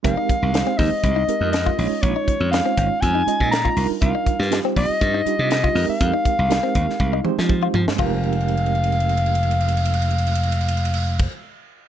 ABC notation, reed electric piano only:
X:1
M:4/4
L:1/8
Q:"Swing 16ths" 1/4=121
K:Fm
V:1 name="Reed electric piano"
[A,CEGB]2 [A,CEGc]3 [A,CEGB]2 [A,DEFd]- | [A,DEFd]2 [A,DEFd]3 [A,DEFe]2 [G,=DEFB]- | [G,=DEFB]2 [G,CEFG]3 [G,DEFG]2 [A,CEGB]- | [A,CEGB]2 [A,CEGB]3 [A,CEGc]3 |
[A,CEGB]8- | [A,CEGB]4- [A,CEGB] z3 |]